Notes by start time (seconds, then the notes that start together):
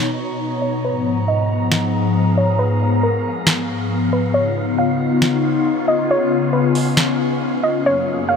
Already playing: B2 B3 D#4 B4 C#5 A#5
0.62 C#5
0.84 G#2 F3 B3 G#4 B4 F5 A#5
1.28 D#5
1.72 snare
2.37 C#5
2.59 B4
3.03 A#4
3.47 snare
4.13 B4
4.34 C#3 B3 D#4 F4 C#5
4.78 F5
5.22 snare
5.88 D#5
6.10 C#4 C#5
6.53 B4
6.75 open hi-hat
6.97 snare
7.63 D#5
7.85 F#2 F#3 G#3 A#3 F#4 G#4 A#4 C#5
8.29 F5